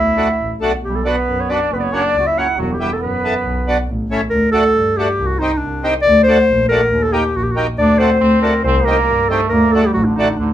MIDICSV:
0, 0, Header, 1, 5, 480
1, 0, Start_track
1, 0, Tempo, 434153
1, 914, Time_signature, 2, 2, 24, 8
1, 11646, End_track
2, 0, Start_track
2, 0, Title_t, "Clarinet"
2, 0, Program_c, 0, 71
2, 0, Note_on_c, 0, 76, 99
2, 630, Note_off_c, 0, 76, 0
2, 929, Note_on_c, 0, 67, 72
2, 1057, Note_on_c, 0, 69, 76
2, 1074, Note_off_c, 0, 67, 0
2, 1193, Note_on_c, 0, 71, 99
2, 1210, Note_off_c, 0, 69, 0
2, 1553, Note_on_c, 0, 73, 72
2, 1570, Note_off_c, 0, 71, 0
2, 1663, Note_on_c, 0, 74, 78
2, 1680, Note_off_c, 0, 73, 0
2, 1891, Note_off_c, 0, 74, 0
2, 1913, Note_on_c, 0, 71, 84
2, 1981, Note_off_c, 0, 71, 0
2, 1988, Note_on_c, 0, 74, 66
2, 2033, Note_on_c, 0, 73, 93
2, 2049, Note_off_c, 0, 74, 0
2, 2155, Note_on_c, 0, 74, 112
2, 2172, Note_off_c, 0, 73, 0
2, 2508, Note_on_c, 0, 76, 96
2, 2525, Note_off_c, 0, 74, 0
2, 2633, Note_on_c, 0, 78, 93
2, 2649, Note_off_c, 0, 76, 0
2, 2858, Note_off_c, 0, 78, 0
2, 2882, Note_on_c, 0, 66, 78
2, 2975, Note_off_c, 0, 66, 0
2, 3014, Note_on_c, 0, 67, 75
2, 3102, Note_off_c, 0, 67, 0
2, 3120, Note_on_c, 0, 67, 88
2, 3236, Note_on_c, 0, 69, 83
2, 3252, Note_off_c, 0, 67, 0
2, 3336, Note_off_c, 0, 69, 0
2, 3343, Note_on_c, 0, 71, 94
2, 4251, Note_off_c, 0, 71, 0
2, 4758, Note_on_c, 0, 70, 102
2, 4985, Note_off_c, 0, 70, 0
2, 4995, Note_on_c, 0, 69, 116
2, 5494, Note_on_c, 0, 67, 99
2, 5510, Note_off_c, 0, 69, 0
2, 5819, Note_on_c, 0, 66, 96
2, 5836, Note_off_c, 0, 67, 0
2, 5958, Note_on_c, 0, 63, 105
2, 5974, Note_off_c, 0, 66, 0
2, 6167, Note_on_c, 0, 62, 97
2, 6183, Note_off_c, 0, 63, 0
2, 6545, Note_off_c, 0, 62, 0
2, 6652, Note_on_c, 0, 74, 118
2, 6882, Note_off_c, 0, 74, 0
2, 6888, Note_on_c, 0, 72, 115
2, 7350, Note_off_c, 0, 72, 0
2, 7395, Note_on_c, 0, 70, 106
2, 7772, Note_on_c, 0, 69, 99
2, 7789, Note_off_c, 0, 70, 0
2, 7878, Note_on_c, 0, 67, 103
2, 7895, Note_off_c, 0, 69, 0
2, 8141, Note_on_c, 0, 66, 103
2, 8158, Note_off_c, 0, 67, 0
2, 8216, Note_on_c, 0, 67, 78
2, 8232, Note_off_c, 0, 66, 0
2, 8307, Note_on_c, 0, 66, 87
2, 8324, Note_off_c, 0, 67, 0
2, 8495, Note_off_c, 0, 66, 0
2, 8603, Note_on_c, 0, 74, 99
2, 8829, Note_on_c, 0, 72, 108
2, 8846, Note_off_c, 0, 74, 0
2, 9302, Note_off_c, 0, 72, 0
2, 9308, Note_on_c, 0, 70, 91
2, 9535, Note_off_c, 0, 70, 0
2, 9548, Note_on_c, 0, 72, 96
2, 9782, Note_on_c, 0, 70, 116
2, 9798, Note_off_c, 0, 72, 0
2, 10269, Note_on_c, 0, 69, 90
2, 10286, Note_off_c, 0, 70, 0
2, 10487, Note_off_c, 0, 69, 0
2, 10494, Note_on_c, 0, 70, 97
2, 10748, Note_on_c, 0, 69, 103
2, 10764, Note_off_c, 0, 70, 0
2, 10865, Note_off_c, 0, 69, 0
2, 10872, Note_on_c, 0, 67, 93
2, 10980, Note_off_c, 0, 67, 0
2, 10987, Note_on_c, 0, 66, 97
2, 11104, Note_on_c, 0, 62, 65
2, 11121, Note_off_c, 0, 66, 0
2, 11219, Note_off_c, 0, 62, 0
2, 11225, Note_on_c, 0, 63, 77
2, 11470, Note_on_c, 0, 62, 75
2, 11486, Note_off_c, 0, 63, 0
2, 11553, Note_on_c, 0, 63, 60
2, 11570, Note_off_c, 0, 62, 0
2, 11646, Note_off_c, 0, 63, 0
2, 11646, End_track
3, 0, Start_track
3, 0, Title_t, "Accordion"
3, 0, Program_c, 1, 21
3, 184, Note_on_c, 1, 57, 64
3, 188, Note_on_c, 1, 62, 51
3, 197, Note_on_c, 1, 66, 66
3, 308, Note_off_c, 1, 57, 0
3, 310, Note_off_c, 1, 62, 0
3, 315, Note_off_c, 1, 66, 0
3, 669, Note_on_c, 1, 57, 67
3, 685, Note_on_c, 1, 62, 67
3, 688, Note_on_c, 1, 66, 82
3, 791, Note_off_c, 1, 57, 0
3, 800, Note_off_c, 1, 62, 0
3, 801, Note_off_c, 1, 66, 0
3, 1162, Note_on_c, 1, 59, 59
3, 1164, Note_on_c, 1, 62, 51
3, 1171, Note_on_c, 1, 66, 70
3, 1279, Note_off_c, 1, 59, 0
3, 1280, Note_off_c, 1, 62, 0
3, 1284, Note_off_c, 1, 66, 0
3, 1638, Note_on_c, 1, 59, 57
3, 1648, Note_on_c, 1, 62, 60
3, 1657, Note_on_c, 1, 66, 64
3, 1758, Note_off_c, 1, 59, 0
3, 1763, Note_off_c, 1, 62, 0
3, 1768, Note_off_c, 1, 66, 0
3, 2127, Note_on_c, 1, 58, 58
3, 2128, Note_on_c, 1, 61, 63
3, 2135, Note_on_c, 1, 66, 66
3, 2243, Note_off_c, 1, 58, 0
3, 2244, Note_off_c, 1, 61, 0
3, 2247, Note_off_c, 1, 66, 0
3, 2618, Note_on_c, 1, 58, 58
3, 2626, Note_on_c, 1, 61, 54
3, 2628, Note_on_c, 1, 66, 63
3, 2730, Note_off_c, 1, 58, 0
3, 2734, Note_off_c, 1, 61, 0
3, 2735, Note_off_c, 1, 66, 0
3, 3094, Note_on_c, 1, 64, 55
3, 3095, Note_on_c, 1, 59, 65
3, 3100, Note_on_c, 1, 67, 67
3, 3208, Note_off_c, 1, 64, 0
3, 3209, Note_off_c, 1, 59, 0
3, 3212, Note_off_c, 1, 67, 0
3, 3582, Note_on_c, 1, 59, 67
3, 3591, Note_on_c, 1, 69, 66
3, 3592, Note_on_c, 1, 64, 52
3, 3693, Note_off_c, 1, 59, 0
3, 3698, Note_off_c, 1, 64, 0
3, 3698, Note_off_c, 1, 69, 0
3, 4058, Note_on_c, 1, 59, 75
3, 4067, Note_on_c, 1, 62, 69
3, 4069, Note_on_c, 1, 66, 71
3, 4171, Note_off_c, 1, 59, 0
3, 4176, Note_off_c, 1, 62, 0
3, 4177, Note_off_c, 1, 66, 0
3, 4543, Note_on_c, 1, 57, 77
3, 4544, Note_on_c, 1, 61, 75
3, 4555, Note_on_c, 1, 64, 82
3, 4654, Note_off_c, 1, 57, 0
3, 4654, Note_off_c, 1, 61, 0
3, 4660, Note_off_c, 1, 64, 0
3, 5009, Note_on_c, 1, 57, 63
3, 5011, Note_on_c, 1, 62, 56
3, 5020, Note_on_c, 1, 66, 76
3, 5127, Note_off_c, 1, 57, 0
3, 5128, Note_off_c, 1, 62, 0
3, 5133, Note_off_c, 1, 66, 0
3, 5508, Note_on_c, 1, 57, 63
3, 5512, Note_on_c, 1, 62, 63
3, 5517, Note_on_c, 1, 66, 72
3, 5617, Note_off_c, 1, 57, 0
3, 5618, Note_off_c, 1, 62, 0
3, 5621, Note_off_c, 1, 66, 0
3, 5976, Note_on_c, 1, 60, 60
3, 5988, Note_on_c, 1, 63, 57
3, 5997, Note_on_c, 1, 67, 70
3, 6090, Note_off_c, 1, 60, 0
3, 6097, Note_off_c, 1, 63, 0
3, 6101, Note_off_c, 1, 67, 0
3, 6450, Note_on_c, 1, 60, 68
3, 6455, Note_on_c, 1, 63, 71
3, 6456, Note_on_c, 1, 67, 81
3, 6567, Note_off_c, 1, 60, 0
3, 6569, Note_off_c, 1, 63, 0
3, 6570, Note_off_c, 1, 67, 0
3, 6940, Note_on_c, 1, 57, 63
3, 6941, Note_on_c, 1, 62, 62
3, 6943, Note_on_c, 1, 66, 74
3, 7051, Note_off_c, 1, 57, 0
3, 7052, Note_off_c, 1, 62, 0
3, 7053, Note_off_c, 1, 66, 0
3, 7413, Note_on_c, 1, 57, 66
3, 7422, Note_on_c, 1, 66, 76
3, 7423, Note_on_c, 1, 62, 61
3, 7527, Note_off_c, 1, 57, 0
3, 7532, Note_off_c, 1, 62, 0
3, 7532, Note_off_c, 1, 66, 0
3, 7876, Note_on_c, 1, 58, 72
3, 7879, Note_on_c, 1, 63, 60
3, 7887, Note_on_c, 1, 67, 71
3, 7999, Note_off_c, 1, 58, 0
3, 8000, Note_off_c, 1, 63, 0
3, 8004, Note_off_c, 1, 67, 0
3, 8354, Note_on_c, 1, 58, 66
3, 8363, Note_on_c, 1, 63, 55
3, 8366, Note_on_c, 1, 67, 71
3, 8477, Note_off_c, 1, 58, 0
3, 8481, Note_off_c, 1, 63, 0
3, 8483, Note_off_c, 1, 67, 0
3, 8828, Note_on_c, 1, 57, 63
3, 8830, Note_on_c, 1, 62, 55
3, 8840, Note_on_c, 1, 66, 74
3, 8953, Note_off_c, 1, 57, 0
3, 8954, Note_off_c, 1, 62, 0
3, 8959, Note_off_c, 1, 66, 0
3, 9312, Note_on_c, 1, 57, 62
3, 9317, Note_on_c, 1, 62, 66
3, 9322, Note_on_c, 1, 66, 70
3, 9435, Note_off_c, 1, 57, 0
3, 9437, Note_off_c, 1, 62, 0
3, 9439, Note_off_c, 1, 66, 0
3, 9804, Note_on_c, 1, 60, 62
3, 9805, Note_on_c, 1, 63, 60
3, 9809, Note_on_c, 1, 67, 70
3, 9920, Note_off_c, 1, 60, 0
3, 9920, Note_off_c, 1, 63, 0
3, 9922, Note_off_c, 1, 67, 0
3, 10281, Note_on_c, 1, 60, 65
3, 10285, Note_on_c, 1, 63, 69
3, 10290, Note_on_c, 1, 67, 69
3, 10398, Note_off_c, 1, 60, 0
3, 10399, Note_off_c, 1, 63, 0
3, 10402, Note_off_c, 1, 67, 0
3, 10769, Note_on_c, 1, 57, 67
3, 10773, Note_on_c, 1, 62, 58
3, 10785, Note_on_c, 1, 66, 68
3, 10881, Note_off_c, 1, 57, 0
3, 10883, Note_off_c, 1, 62, 0
3, 10889, Note_off_c, 1, 66, 0
3, 11253, Note_on_c, 1, 57, 64
3, 11264, Note_on_c, 1, 62, 58
3, 11271, Note_on_c, 1, 66, 82
3, 11362, Note_off_c, 1, 57, 0
3, 11367, Note_off_c, 1, 62, 0
3, 11371, Note_off_c, 1, 66, 0
3, 11646, End_track
4, 0, Start_track
4, 0, Title_t, "Trombone"
4, 0, Program_c, 2, 57
4, 0, Note_on_c, 2, 64, 86
4, 686, Note_off_c, 2, 64, 0
4, 958, Note_on_c, 2, 55, 75
4, 1187, Note_on_c, 2, 59, 84
4, 1204, Note_off_c, 2, 55, 0
4, 1672, Note_on_c, 2, 62, 85
4, 1688, Note_off_c, 2, 59, 0
4, 1937, Note_on_c, 2, 59, 83
4, 1953, Note_off_c, 2, 62, 0
4, 2140, Note_on_c, 2, 62, 95
4, 2157, Note_off_c, 2, 59, 0
4, 2413, Note_off_c, 2, 62, 0
4, 2425, Note_on_c, 2, 66, 60
4, 2509, Note_on_c, 2, 64, 72
4, 2525, Note_off_c, 2, 66, 0
4, 2834, Note_on_c, 2, 55, 56
4, 2848, Note_on_c, 2, 54, 79
4, 2851, Note_off_c, 2, 64, 0
4, 2864, Note_off_c, 2, 55, 0
4, 2979, Note_on_c, 2, 55, 64
4, 2996, Note_off_c, 2, 54, 0
4, 3081, Note_off_c, 2, 55, 0
4, 3088, Note_on_c, 2, 55, 78
4, 3289, Note_on_c, 2, 59, 77
4, 3305, Note_off_c, 2, 55, 0
4, 4268, Note_off_c, 2, 59, 0
4, 8616, Note_on_c, 2, 62, 95
4, 8831, Note_off_c, 2, 62, 0
4, 8841, Note_on_c, 2, 60, 87
4, 9062, Note_off_c, 2, 60, 0
4, 9073, Note_on_c, 2, 60, 90
4, 9520, Note_off_c, 2, 60, 0
4, 9562, Note_on_c, 2, 60, 95
4, 9766, Note_on_c, 2, 58, 89
4, 9783, Note_off_c, 2, 60, 0
4, 10260, Note_off_c, 2, 58, 0
4, 10287, Note_on_c, 2, 57, 97
4, 10533, Note_on_c, 2, 58, 85
4, 10550, Note_off_c, 2, 57, 0
4, 10776, Note_on_c, 2, 57, 67
4, 10793, Note_off_c, 2, 58, 0
4, 10878, Note_on_c, 2, 55, 66
4, 10895, Note_off_c, 2, 57, 0
4, 10993, Note_on_c, 2, 54, 75
4, 11010, Note_off_c, 2, 55, 0
4, 11111, Note_on_c, 2, 50, 62
4, 11127, Note_off_c, 2, 54, 0
4, 11470, Note_off_c, 2, 50, 0
4, 11490, Note_on_c, 2, 50, 76
4, 11626, Note_off_c, 2, 50, 0
4, 11646, End_track
5, 0, Start_track
5, 0, Title_t, "Double bass"
5, 0, Program_c, 3, 43
5, 0, Note_on_c, 3, 38, 85
5, 242, Note_off_c, 3, 38, 0
5, 433, Note_on_c, 3, 33, 76
5, 649, Note_off_c, 3, 33, 0
5, 675, Note_on_c, 3, 35, 70
5, 891, Note_off_c, 3, 35, 0
5, 912, Note_on_c, 3, 35, 88
5, 1202, Note_off_c, 3, 35, 0
5, 1400, Note_on_c, 3, 42, 82
5, 1688, Note_off_c, 3, 42, 0
5, 1886, Note_on_c, 3, 30, 93
5, 2173, Note_off_c, 3, 30, 0
5, 2366, Note_on_c, 3, 37, 76
5, 2654, Note_off_c, 3, 37, 0
5, 2848, Note_on_c, 3, 28, 90
5, 3135, Note_off_c, 3, 28, 0
5, 3319, Note_on_c, 3, 42, 82
5, 3609, Note_off_c, 3, 42, 0
5, 3802, Note_on_c, 3, 35, 94
5, 4091, Note_off_c, 3, 35, 0
5, 4286, Note_on_c, 3, 33, 84
5, 4574, Note_off_c, 3, 33, 0
5, 4765, Note_on_c, 3, 38, 91
5, 5053, Note_off_c, 3, 38, 0
5, 5251, Note_on_c, 3, 43, 85
5, 5537, Note_off_c, 3, 43, 0
5, 5733, Note_on_c, 3, 36, 88
5, 6018, Note_off_c, 3, 36, 0
5, 6219, Note_on_c, 3, 36, 85
5, 6502, Note_off_c, 3, 36, 0
5, 6694, Note_on_c, 3, 38, 106
5, 6978, Note_off_c, 3, 38, 0
5, 7182, Note_on_c, 3, 34, 90
5, 7463, Note_off_c, 3, 34, 0
5, 7639, Note_on_c, 3, 39, 93
5, 7927, Note_off_c, 3, 39, 0
5, 8117, Note_on_c, 3, 34, 81
5, 8406, Note_off_c, 3, 34, 0
5, 8599, Note_on_c, 3, 38, 106
5, 8886, Note_off_c, 3, 38, 0
5, 9071, Note_on_c, 3, 38, 97
5, 9361, Note_off_c, 3, 38, 0
5, 9546, Note_on_c, 3, 36, 110
5, 9837, Note_off_c, 3, 36, 0
5, 10031, Note_on_c, 3, 43, 88
5, 10320, Note_off_c, 3, 43, 0
5, 10509, Note_on_c, 3, 38, 105
5, 10798, Note_off_c, 3, 38, 0
5, 10996, Note_on_c, 3, 33, 89
5, 11282, Note_off_c, 3, 33, 0
5, 11471, Note_on_c, 3, 38, 89
5, 11646, Note_off_c, 3, 38, 0
5, 11646, End_track
0, 0, End_of_file